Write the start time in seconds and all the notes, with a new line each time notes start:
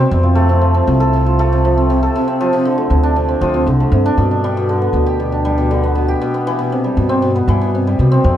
Already playing: B2 G3 D4 G4
0.00 C4
0.11 F2 C3
0.23 F4
0.35 A3
0.49 C3
0.61 F3
0.74 C4
0.87 C2 C3
1.00 A4
1.13 C3
1.26 F4
1.39 A3
1.53 C3
1.65 F3
1.78 C4
1.90 C3
2.03 A4
2.16 C3
2.28 C4
2.41 F3
2.53 C3
2.65 D3
2.78 A3
2.90 D2 C3
3.03 D4
3.16 C3
3.29 C4
3.41 D2 F3
3.54 C3
3.66 C2 D3
3.80 A3
3.92 G2 C3
4.06 D4
4.17 G2 B2
4.31 D4
4.44 G3
4.57 B2
4.69 D3
4.82 B3
4.93 D2 B2
5.06 G4
5.20 B2
5.32 D4
5.45 G3
5.58 B2
5.71 D3
5.84 B3
5.95 B2
6.08 G4
6.22 B2
6.34 B3
6.47 E3
6.59 B2
6.72 C3
6.84 G3
6.97 G2 B2
7.09 C4
7.22 B2
7.36 B3
7.48 G2 E3
7.61 B2
7.75 C3
7.87 G3
7.99 B2 C3
8.12 C4
8.24 F2 C3